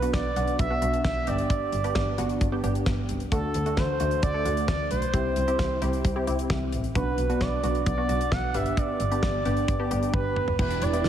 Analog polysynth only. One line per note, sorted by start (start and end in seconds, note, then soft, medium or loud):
0.02 0.31 B3 medium
0.02 0.31 D4 medium
0.02 0.31 F#4 medium
0.36 0.65 B3 medium
0.36 0.65 D4 medium
0.36 0.65 F#4 medium
0.70 0.80 B3 medium
0.70 0.80 D4 medium
0.70 0.80 F#4 medium
0.82 1.26 B3 medium
0.82 1.26 D4 medium
0.82 1.27 F#4 medium
1.27 1.75 B3 medium
1.27 1.75 D4 medium
1.27 1.75 G4 medium
1.84 2.13 B3 medium
1.84 2.13 D4 medium
1.84 2.13 G4 loud
2.18 2.47 B3 medium
2.18 2.47 D4 medium
2.18 2.47 F#4 loud
2.52 2.62 B3 medium
2.52 2.62 D4 medium
2.52 2.62 G4 loud
2.64 3.21 B3 medium
2.64 3.21 D4 medium
2.64 3.21 G4 loud
3.32 3.61 A3 medium
3.32 3.61 D4 medium
3.32 3.61 F#4 medium
3.66 3.95 A3 medium
3.66 3.95 D4 medium
3.66 3.95 F#4 medium
4.00 4.29 A3 medium
4.00 4.29 D4 medium
4.00 4.29 F#4 medium
4.34 4.44 A3 medium
4.34 4.44 D4 medium
4.34 4.44 A4 medium
4.45 5.03 A3 medium
4.45 5.03 D4 medium
4.45 5.03 F#4 medium
5.14 5.42 C4 medium
5.14 5.42 E4 medium
5.14 5.42 G4 medium
5.48 5.76 C4 medium
5.48 5.76 E4 medium
5.48 5.76 G4 medium
5.82 6.11 C4 medium
5.82 6.11 E4 medium
5.82 6.11 G4 loud
6.16 6.26 C4 medium
6.16 6.25 E4 medium
6.16 6.26 G4 loud
6.27 6.85 C4 medium
6.27 6.85 E4 medium
6.27 6.85 G4 loud
6.95 7.24 B3 medium
6.95 7.24 D4 medium
6.95 7.24 F#4 medium
7.29 7.58 B3 medium
7.29 7.58 D4 medium
7.29 7.58 F#4 medium
7.64 7.92 B3 medium
7.64 7.92 D4 medium
7.64 7.92 F#4 medium
7.98 8.07 B3 medium
7.98 8.07 D4 medium
7.98 8.07 F#4 medium
8.09 8.53 B3 medium
8.09 8.53 D4 medium
8.09 8.55 F#4 medium
8.55 9.02 B3 medium
8.55 9.02 D4 medium
8.55 9.02 G4 medium
9.11 9.40 B3 medium
9.11 9.40 D4 medium
9.11 9.40 G4 medium
9.46 9.74 B3 medium
9.46 9.74 D4 medium
9.46 9.74 G4 loud
9.79 9.89 B3 medium
9.79 9.89 D4 medium
9.79 9.89 G4 loud
9.91 10.48 B3 medium
9.91 10.48 D4 medium
9.91 10.48 G4 loud
10.59 10.88 B3 medium
10.59 10.88 E4 medium
10.59 10.88 G4 medium
10.93 11.09 B3 medium
10.93 11.09 E4 medium
10.93 11.09 G4 medium